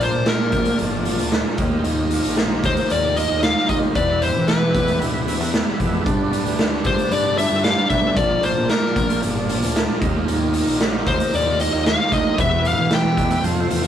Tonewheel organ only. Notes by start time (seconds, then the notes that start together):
Already playing: D4 F4 A#4 D5
1.59 G4 D#5
3.94 E4 B4 E5
6.05 D4 B4 D5
8.18 F4 A#4
10.00 G4 D#5
12.37 E4 B4 E5
13.43 F4 A4 C5 F5